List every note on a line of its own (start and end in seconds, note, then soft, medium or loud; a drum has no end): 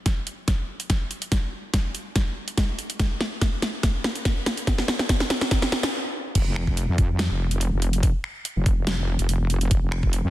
0.06 kick medium
0.06 snare soft
0.06 closed hi-hat medium
0.27 closed hi-hat medium
0.48 kick medium
0.48 snare soft
0.48 closed hi-hat medium
0.80 closed hi-hat medium
0.90 kick medium
0.90 snare medium
0.90 closed hi-hat medium
1.11 closed hi-hat medium
1.22 closed hi-hat medium
1.32 kick loud
1.32 snare medium
1.32 closed hi-hat medium
1.74 kick medium
1.74 snare medium
1.74 closed hi-hat medium
1.95 closed hi-hat medium
2.16 kick medium
2.16 snare medium
2.16 closed hi-hat medium
2.48 closed hi-hat medium
2.58 kick medium
2.58 snare medium
2.58 closed hi-hat medium
2.79 closed hi-hat medium
2.90 closed hi-hat medium
2.99 kick loud
2.99 snare medium
2.99 closed hi-hat medium
3.21 snare medium
3.41 kick loud
3.41 snare medium
3.41 closed hi-hat medium
3.62 snare medium
3.62 closed hi-hat medium
3.83 kick loud
3.83 snare medium
3.83 closed hi-hat medium
4.04 snare medium
4.15 closed hi-hat medium
4.25 kick loud
4.25 snare medium
4.25 closed hi-hat medium
4.46 snare medium
4.46 closed hi-hat medium
4.57 closed hi-hat medium
4.67 kick loud
4.67 snare medium
4.67 closed hi-hat medium
4.78 snare medium
4.88 snare medium
4.99 snare medium
5.09 kick loud
5.09 snare medium
5.09 closed hi-hat medium
5.20 snare medium
5.30 snare loud
5.30 closed hi-hat medium
5.41 snare medium
5.51 kick loud
5.51 snare loud
5.51 closed hi-hat medium
5.62 snare medium
5.72 snare loud
5.83 snare medium
5.83 closed hi-hat medium
6.35 6.45 F1 medium
6.35 kick loud
6.35 closed hi-hat medium
6.35 crash loud
6.46 6.87 F1 loud
6.56 finger snap medium
6.67 kick medium
6.77 closed hi-hat medium
6.88 6.97 F2 loud
6.98 7.29 F2 medium
6.98 kick loud
6.98 closed hi-hat medium
7.19 snare loud
7.19 closed hi-hat medium
7.30 7.71 F1 loud
7.51 closed hi-hat medium
7.61 closed hi-hat medium
7.72 8.12 F1 loud
7.82 closed hi-hat medium
7.93 closed hi-hat medium
8.03 kick loud
8.03 closed hi-hat medium
8.24 finger snap medium
8.45 closed hi-hat medium
8.56 9.17 F1 medium
8.66 kick loud
8.66 closed hi-hat medium
8.87 snare loud
8.87 closed hi-hat medium
9.19 9.69 F1 loud
9.19 closed hi-hat medium
9.29 closed hi-hat medium
9.50 closed hi-hat medium
9.61 closed hi-hat medium
9.71 9.80 F1 loud
9.71 kick loud
9.71 closed hi-hat medium
9.82 10.22 F1 loud
9.92 finger snap medium
10.03 kick medium
10.13 closed hi-hat medium
10.24 10.30 F2 loud